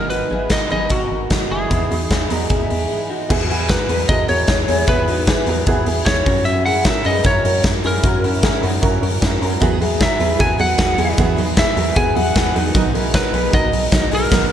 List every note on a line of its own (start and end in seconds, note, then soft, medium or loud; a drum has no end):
0.00 0.23 G#1 medium
0.00 0.30 G#2 medium
0.00 0.29 D#3 medium
0.00 0.30 F#3 medium
0.00 0.32 B3 medium
0.00 0.10 D#4 soft
0.00 0.32 D#4 medium
0.10 0.31 D#4 medium
0.10 0.30 F#4 medium
0.10 0.52 B4 medium
0.10 closed hi-hat soft
0.29 0.47 G#1 medium
0.29 0.70 D#3 medium
0.29 0.70 F#3 medium
0.29 0.71 B3 medium
0.29 0.72 D#4 medium
0.29 0.50 E4 medium
0.29 0.50 G#4 medium
0.50 0.67 G#1 loud
0.50 0.70 F#4 medium
0.50 0.69 A#4 medium
0.50 0.70 D#5 medium
0.50 kick medium
0.50 snare medium
0.50 closed hi-hat medium
0.69 0.88 G#1 loud
0.69 1.00 G#2 medium
0.69 1.01 D#3 medium
0.69 1.01 F#3 medium
0.69 1.01 B3 medium
0.69 1.00 D#4 medium
0.69 0.90 G#4 medium
0.69 0.90 B4 medium
0.69 0.92 D#5 medium
0.89 1.07 G#1 medium
0.89 1.47 F#4 medium
0.89 1.53 F#4 medium
0.89 1.47 A#4 medium
0.89 kick loud
0.89 closed hi-hat medium
1.01 1.30 F#3 soft
1.01 1.31 D#4 soft
1.11 1.27 G#1 medium
1.30 1.47 G#1 medium
1.30 1.70 D#3 medium
1.30 1.71 F#3 medium
1.30 1.73 B3 medium
1.30 1.72 D#4 medium
1.30 kick medium
1.30 snare loud
1.30 closed hi-hat medium
1.51 1.67 F#1 medium
1.51 1.69 E4 medium
1.51 1.71 G#4 medium
1.51 3.07 G#4 medium
1.70 1.87 E2 loud
1.70 1.89 E3 medium
1.70 1.91 G#3 medium
1.70 1.91 B3 medium
1.70 1.92 B3 medium
1.70 1.92 D#4 medium
1.70 1.90 E4 medium
1.70 kick medium
1.70 closed hi-hat medium
1.91 2.07 E2 loud
1.91 2.30 E3 medium
1.91 2.30 G#3 medium
1.91 2.31 B3 medium
1.91 2.11 D#4 medium
1.91 2.31 D#4 medium
1.91 2.11 F#4 medium
1.91 open hi-hat medium
2.10 2.27 E2 loud
2.10 2.31 E4 medium
2.10 2.31 G#4 medium
2.10 kick medium
2.10 snare medium
2.10 closed hi-hat medium
2.30 2.47 E2 medium
2.30 2.60 E3 medium
2.30 2.61 G#3 medium
2.30 2.60 B3 medium
2.30 2.59 D#4 medium
2.30 2.50 F#4 soft
2.30 2.51 A#4 medium
2.30 open hi-hat medium
2.49 2.67 E2 loud
2.49 3.07 E4 medium
2.49 3.06 G#4 medium
2.49 kick loud
2.49 closed hi-hat medium
2.60 2.90 G#3 soft
2.60 2.91 B3 soft
2.60 2.90 D#4 medium
2.70 2.87 E2 loud
2.70 open hi-hat medium
2.90 3.81 E3 medium
2.90 3.81 G#3 medium
2.90 3.81 B3 medium
2.90 3.31 D#4 medium
3.10 3.30 D#4 soft
3.10 3.28 F#4 medium
3.29 3.77 E2 loud
3.29 3.43 B3 loud
3.29 3.50 B3 medium
3.29 3.44 E4 loud
3.29 3.49 F#4 loud
3.29 3.44 F#4 loud
3.29 3.44 G#4 loud
3.29 kick loud
3.29 crash loud
3.49 3.64 B3 medium
3.49 3.69 E4 medium
3.49 3.64 E4 medium
3.49 3.64 F#4 medium
3.49 3.69 G#4 medium
3.49 3.65 G#4 loud
3.49 open hi-hat medium
3.69 3.83 B3 medium
3.69 3.84 E4 medium
3.69 3.90 F#4 medium
3.69 3.84 F#4 medium
3.69 3.84 G#4 medium
3.69 3.89 A#4 medium
3.69 4.07 B4 medium
3.69 kick loud
3.69 snare loud
3.69 closed hi-hat medium
3.89 4.06 E2 loud
3.89 4.03 B3 medium
3.89 4.03 E4 medium
3.89 4.04 F#4 medium
3.89 4.09 G#4 medium
3.89 4.04 G#4 medium
3.89 4.08 B4 medium
3.89 open hi-hat medium
4.09 4.25 E2 loud
4.09 4.23 B3 medium
4.09 4.23 E4 medium
4.09 4.65 F#4 medium
4.09 4.23 F#4 medium
4.09 4.24 G#4 loud
4.09 4.65 A#4 medium
4.09 4.29 D#5 loud
4.09 kick loud
4.09 closed hi-hat medium
4.28 4.45 E2 loud
4.28 4.43 B3 medium
4.28 4.43 E4 medium
4.28 4.43 F#4 medium
4.28 4.44 G#4 medium
4.28 4.84 C#5 loud
4.28 open hi-hat medium
4.47 4.65 E2 loud
4.47 4.62 B3 medium
4.47 4.63 E4 medium
4.47 4.63 F#4 medium
4.47 4.64 G#4 medium
4.47 kick loud
4.47 snare loud
4.47 closed hi-hat medium
4.68 4.85 E2 loud
4.68 4.82 B3 medium
4.68 4.82 E4 medium
4.68 4.87 E4 medium
4.68 4.83 F#4 medium
4.68 4.88 G#4 medium
4.68 4.83 G#4 medium
4.68 open hi-hat medium
4.87 5.35 E2 loud
4.87 5.02 B3 medium
4.87 5.08 B3 medium
4.87 5.02 E4 medium
4.87 5.08 E4 loud
4.87 5.02 F#4 medium
4.87 5.03 G#4 loud
4.87 5.64 B4 medium
4.87 kick loud
4.87 closed hi-hat medium
5.08 5.22 B3 medium
5.08 5.28 D#4 medium
5.08 5.22 E4 medium
5.08 5.28 F#4 medium
5.08 5.23 F#4 medium
5.08 5.23 G#4 medium
5.08 open hi-hat medium
5.27 5.42 B3 medium
5.27 5.42 E4 medium
5.27 5.47 E4 medium
5.27 5.42 F#4 medium
5.27 5.48 G#4 medium
5.27 5.43 G#4 medium
5.27 kick loud
5.27 snare loud
5.27 closed hi-hat medium
5.46 5.64 E2 loud
5.46 5.61 B3 medium
5.46 5.62 E4 medium
5.46 5.67 F#4 medium
5.46 5.62 F#4 medium
5.46 5.62 G#4 loud
5.46 5.67 A#4 medium
5.46 open hi-hat medium
5.66 5.83 E2 loud
5.66 5.81 B3 loud
5.66 5.81 E4 loud
5.66 6.24 E4 medium
5.66 5.81 F#4 loud
5.66 6.23 G#4 medium
5.66 5.82 G#4 loud
5.66 kick loud
5.66 closed hi-hat medium
5.86 6.03 E2 loud
5.86 6.01 B3 medium
5.86 6.01 E4 medium
5.86 6.01 F#4 medium
5.86 6.01 G#4 loud
5.86 open hi-hat medium
6.06 6.23 E2 loud
6.06 6.20 B3 medium
6.06 6.21 E4 medium
6.06 6.21 F#4 medium
6.06 6.21 G#4 medium
6.06 6.43 C#5 loud
6.06 kick loud
6.06 snare loud
6.06 closed hi-hat medium
6.25 6.83 F#2 loud
6.25 6.57 C#4 medium
6.25 6.45 C#4 medium
6.25 6.58 E4 medium
6.25 6.44 F#4 medium
6.25 6.58 F#4 medium
6.25 6.58 A#4 medium
6.25 kick loud
6.25 open hi-hat medium
6.45 6.66 C#4 medium
6.45 6.65 F#4 loud
6.45 6.64 E5 loud
6.45 closed hi-hat medium
6.66 6.80 C#4 medium
6.66 6.85 E4 medium
6.66 6.80 E4 medium
6.66 6.80 F#4 medium
6.66 6.85 G#4 medium
6.66 6.81 A#4 medium
6.66 6.86 F#5 loud
6.66 open hi-hat medium
6.85 6.99 C#4 medium
6.85 6.99 E4 medium
6.85 7.05 F#4 medium
6.85 7.00 F#4 medium
6.85 7.04 A#4 medium
6.85 7.00 A#4 medium
6.85 7.06 E5 loud
6.85 kick loud
6.85 snare loud
6.85 closed hi-hat medium
7.04 7.22 F#2 loud
7.04 7.19 C#4 medium
7.04 7.19 E4 medium
7.04 7.19 F#4 medium
7.04 7.25 G#4 medium
7.04 7.20 A#4 medium
7.04 7.24 B4 medium
7.04 7.24 D#5 loud
7.04 open hi-hat medium
7.24 7.41 F#2 loud
7.24 7.38 C#4 loud
7.24 7.39 E4 medium
7.24 7.39 F#4 medium
7.24 7.81 F#4 medium
7.24 7.80 A#4 medium
7.24 7.39 A#4 loud
7.24 7.62 C#5 loud
7.24 kick loud
7.24 closed hi-hat medium
7.44 7.61 F#2 loud
7.44 7.58 C#4 medium
7.44 7.58 E4 medium
7.44 7.59 F#4 medium
7.44 7.59 A#4 medium
7.44 open hi-hat medium
7.63 7.81 F#2 loud
7.63 7.77 C#4 medium
7.63 7.78 E4 medium
7.63 7.78 F#4 medium
7.63 7.78 A#4 medium
7.63 kick loud
7.63 snare loud
7.63 closed hi-hat medium
7.83 8.01 F#2 loud
7.83 7.97 C#4 medium
7.83 7.98 E4 medium
7.83 8.04 E4 medium
7.83 7.98 F#4 medium
7.83 8.04 G#4 medium
7.83 7.98 A#4 medium
7.83 8.60 A#4 medium
7.83 open hi-hat medium
8.03 8.50 F#2 loud
8.03 8.17 C#4 loud
8.03 8.24 C#4 medium
8.03 8.18 E4 medium
8.03 8.24 F#4 loud
8.03 8.18 F#4 medium
8.03 8.18 A#4 loud
8.03 kick loud
8.03 closed hi-hat medium
8.23 8.37 C#4 medium
8.23 8.44 C#4 medium
8.23 8.37 E4 medium
8.23 8.43 E4 medium
8.23 8.38 F#4 medium
8.23 8.38 A#4 medium
8.23 open hi-hat medium
8.42 8.56 C#4 medium
8.42 8.57 E4 medium
8.42 8.64 E4 medium
8.42 8.57 F#4 medium
8.42 8.62 G#4 medium
8.42 8.57 A#4 loud
8.42 kick loud
8.42 snare loud
8.42 closed hi-hat medium
8.62 8.79 F#2 loud
8.62 8.76 C#4 medium
8.62 8.83 D#4 medium
8.62 8.76 E4 medium
8.62 8.83 F#4 medium
8.62 8.77 F#4 medium
8.62 8.77 A#4 loud
8.62 open hi-hat medium
8.81 8.99 F#2 loud
8.81 8.96 C#4 loud
8.81 8.96 E4 loud
8.81 8.97 F#4 loud
8.81 9.39 F#4 medium
8.81 9.38 A#4 medium
8.81 8.97 A#4 loud
8.81 kick loud
8.81 closed hi-hat medium
9.01 9.18 F#2 loud
9.01 9.15 C#4 medium
9.01 9.16 E4 medium
9.01 9.16 F#4 medium
9.01 9.16 A#4 loud
9.01 open hi-hat medium
9.21 9.38 F#2 loud
9.21 9.35 C#4 medium
9.21 9.36 E4 medium
9.21 9.36 F#4 medium
9.21 9.36 A#4 loud
9.21 kick loud
9.21 snare loud
9.21 closed hi-hat medium
9.40 9.58 F#2 medium
9.40 9.55 C#4 medium
9.40 9.55 E4 medium
9.40 9.55 F#4 medium
9.40 9.60 F#4 medium
9.40 9.62 A#4 medium
9.40 9.56 A#4 medium
9.40 open hi-hat medium
9.60 10.08 E2 loud
9.60 9.80 E3 loud
9.60 9.78 F#3 loud
9.60 9.74 B3 loud
9.60 9.79 B3 loud
9.60 9.81 B3 medium
9.60 9.75 E4 loud
9.60 9.75 F#4 loud
9.60 9.81 F#4 medium
9.60 9.80 F#4 loud
9.60 9.81 G#4 loud
9.60 9.76 G#4 loud
9.60 kick loud
9.60 closed hi-hat medium
9.79 10.18 F#3 medium
9.79 9.94 B3 medium
9.79 10.19 B3 medium
9.79 9.94 E4 medium
9.79 10.01 E4 medium
9.79 9.95 F#4 medium
9.79 10.20 F#4 medium
9.79 10.01 G#4 medium
9.79 9.95 G#4 loud
9.79 10.21 G#4 medium
9.79 open hi-hat medium
9.99 10.13 B3 medium
9.99 10.14 E4 medium
9.99 10.14 F#4 medium
9.99 10.21 F#4 medium
9.99 10.21 A#4 medium
9.99 kick loud
9.99 snare loud
9.99 closed hi-hat medium
10.03 10.42 E5 medium
10.19 10.36 E2 loud
10.19 10.57 F#3 medium
10.19 10.33 B3 medium
10.19 10.58 B3 medium
10.19 10.34 E4 medium
10.19 10.34 F#4 medium
10.19 10.59 F#4 medium
10.19 10.34 G#4 medium
10.19 10.40 G#4 medium
10.19 10.60 G#4 medium
10.19 10.40 B4 medium
10.19 open hi-hat medium
10.37 10.56 E2 loud
10.37 10.52 B3 loud
10.37 10.53 E4 medium
10.37 10.53 F#4 medium
10.37 10.96 F#4 medium
10.37 10.53 G#4 loud
10.37 10.95 A#4 medium
10.37 10.58 G#5 loud
10.37 kick loud
10.37 closed hi-hat medium
10.58 10.76 E2 loud
10.58 10.76 F#3 medium
10.58 10.73 B3 medium
10.58 10.77 B3 medium
10.58 10.73 E4 medium
10.58 10.78 F#4 medium
10.58 10.73 F#4 medium
10.58 10.74 G#4 medium
10.58 10.79 G#4 medium
10.58 11.15 F#5 loud
10.58 open hi-hat medium
10.77 10.95 E2 loud
10.77 10.95 F#3 medium
10.77 10.92 B3 medium
10.77 10.97 B3 medium
10.77 10.93 E4 medium
10.77 10.97 F#4 medium
10.77 10.93 F#4 medium
10.77 10.98 G#4 medium
10.77 10.93 G#4 medium
10.77 kick loud
10.77 snare loud
10.77 closed hi-hat medium
10.97 11.14 E2 loud
10.97 11.16 F#3 medium
10.97 11.12 B3 medium
10.97 11.17 B3 medium
10.97 11.12 E4 medium
10.97 11.18 E4 medium
10.97 11.12 F#4 medium
10.97 11.17 F#4 medium
10.97 11.18 G#4 medium
10.97 11.13 G#4 medium
10.97 11.18 G#4 medium
10.97 open hi-hat medium
11.17 11.65 E2 loud
11.17 11.37 E3 medium
11.17 11.35 F#3 loud
11.17 11.36 B3 loud
11.17 11.32 B3 loud
11.17 11.37 B3 medium
11.17 11.32 E4 loud
11.17 11.38 E4 loud
11.17 11.37 F#4 loud
11.17 11.32 F#4 loud
11.17 11.38 G#4 loud
11.17 11.33 G#4 loud
11.17 kick loud
11.17 closed hi-hat medium
11.36 11.75 F#3 medium
11.36 11.51 B3 medium
11.36 11.76 B3 medium
11.36 11.58 D#4 medium
11.36 11.51 E4 medium
11.36 11.57 F#4 medium
11.36 11.52 F#4 medium
11.36 11.77 F#4 medium
11.36 11.52 G#4 loud
11.36 11.77 G#4 medium
11.36 open hi-hat medium
11.56 11.71 B3 medium
11.56 11.71 E4 medium
11.56 11.77 E4 medium
11.56 11.71 F#4 medium
11.56 11.77 G#4 medium
11.56 11.71 G#4 medium
11.56 11.99 E5 medium
11.56 kick loud
11.56 snare loud
11.56 closed hi-hat medium
11.75 11.93 E2 loud
11.75 12.15 F#3 medium
11.75 11.90 B3 medium
11.75 12.16 B3 medium
11.75 11.90 E4 medium
11.75 11.91 F#4 medium
11.75 12.17 F#4 medium
11.75 11.96 F#4 medium
11.75 11.91 G#4 medium
11.75 12.17 G#4 medium
11.75 11.97 A#4 medium
11.75 open hi-hat medium
11.95 12.13 E2 loud
11.95 12.10 B3 loud
11.95 12.10 E4 medium
11.95 12.53 E4 medium
11.95 12.10 F#4 medium
11.95 12.10 G#4 loud
11.95 12.52 G#4 medium
11.95 12.16 G#5 loud
11.95 kick loud
11.95 closed hi-hat medium
12.15 12.32 E2 loud
12.15 12.34 F#3 medium
12.15 12.29 B3 medium
12.15 12.35 B3 medium
12.15 12.30 E4 medium
12.15 12.30 F#4 medium
12.15 12.36 F#4 medium
12.15 12.30 G#4 medium
12.15 12.37 G#4 medium
12.15 12.75 F#5 loud
12.15 open hi-hat medium
12.35 12.52 E2 loud
12.35 12.53 F#3 medium
12.35 12.49 B3 medium
12.35 12.54 B3 medium
12.35 12.49 E4 medium
12.35 12.50 F#4 medium
12.35 12.55 F#4 medium
12.35 12.50 G#4 medium
12.35 12.56 G#4 medium
12.35 kick loud
12.35 snare loud
12.35 closed hi-hat medium
12.54 12.72 E2 loud
12.54 12.74 F#3 medium
12.54 12.69 B3 medium
12.54 12.75 B3 medium
12.54 12.75 D#4 medium
12.54 12.69 E4 medium
12.54 12.69 F#4 medium
12.54 12.74 F#4 medium
12.54 12.76 F#4 medium
12.54 12.70 G#4 medium
12.54 12.76 G#4 medium
12.54 open hi-hat medium
12.74 13.22 B1 loud
12.74 12.94 B2 loud
12.74 12.95 D#3 medium
12.74 12.93 F#3 loud
12.74 12.88 B3 loud
12.74 12.94 B3 loud
12.74 12.89 D#4 loud
12.74 12.95 D#4 medium
12.74 12.95 D#4 loud
12.74 12.94 F#4 loud
12.74 12.89 F#4 loud
12.74 12.89 A#4 loud
12.74 12.95 A#4 loud
12.74 kick loud
12.74 closed hi-hat medium
12.93 13.32 F#3 medium
12.93 13.08 B3 medium
12.93 13.34 B3 medium
12.93 13.08 D#4 medium
12.93 13.34 D#4 medium
12.93 13.14 E4 medium
12.93 13.08 F#4 medium
12.93 13.14 G#4 medium
12.93 13.09 A#4 loud
12.93 open hi-hat medium
12.97 13.35 A#4 medium
13.12 13.27 B3 medium
13.12 13.28 D#4 medium
13.12 13.28 F#4 medium
13.12 13.34 F#4 medium
13.12 13.33 A#4 medium
13.12 13.28 A#4 medium
13.12 13.55 B4 medium
13.12 kick loud
13.12 snare loud
13.12 closed hi-hat medium
13.31 13.50 B1 loud
13.31 13.71 F#3 medium
13.31 13.46 B3 medium
13.31 13.73 B3 medium
13.31 13.47 D#4 medium
13.31 13.47 F#4 medium
13.31 13.53 G#4 medium
13.31 13.48 A#4 medium
13.31 13.53 B4 medium
13.31 open hi-hat medium
13.36 13.74 D#4 medium
13.36 13.74 A#4 medium
13.51 13.70 B1 loud
13.51 13.66 B3 loud
13.51 13.66 D#4 medium
13.51 13.67 F#4 medium
13.51 14.09 F#4 medium
13.51 13.67 A#4 loud
13.51 14.09 A#4 medium
13.51 14.09 D#5 loud
13.51 kick loud
13.51 closed hi-hat medium
13.71 13.89 B1 loud
13.71 13.91 F#3 medium
13.71 13.86 B3 medium
13.71 13.92 B3 medium
13.71 13.86 D#4 medium
13.71 13.93 D#4 medium
13.71 13.87 F#4 medium
13.71 13.87 A#4 medium
13.71 open hi-hat medium
13.76 13.94 A#4 medium
13.91 14.09 B1 loud
13.91 14.10 F#3 medium
13.91 14.06 B3 medium
13.91 14.11 B3 medium
13.91 14.06 D#4 medium
13.91 14.12 D#4 medium
13.91 14.07 F#4 medium
13.91 14.07 A#4 medium
13.91 14.13 A#4 medium
13.91 kick loud
13.91 snare loud
13.91 closed hi-hat medium
14.11 14.29 B1 loud
14.11 14.30 F#3 medium
14.11 14.26 B3 medium
14.11 14.31 B3 medium
14.11 14.26 D#4 medium
14.11 14.31 D#4 medium
14.11 14.32 E4 medium
14.11 14.26 F#4 medium
14.11 14.31 G#4 medium
14.11 14.27 A#4 medium
14.11 14.31 A#4 medium
14.11 14.52 A#4 medium
14.11 open hi-hat medium
14.30 14.45 B1 loud
14.30 14.45 B2 loud
14.30 14.45 D#3 loud
14.30 14.45 F#3 loud
14.30 14.44 B3 loud
14.30 14.45 B3 loud
14.30 14.45 D#4 loud
14.30 14.46 D#4 loud
14.30 14.45 F#4 loud
14.30 14.46 A#4 loud
14.30 kick loud
14.30 snare loud
14.30 crash medium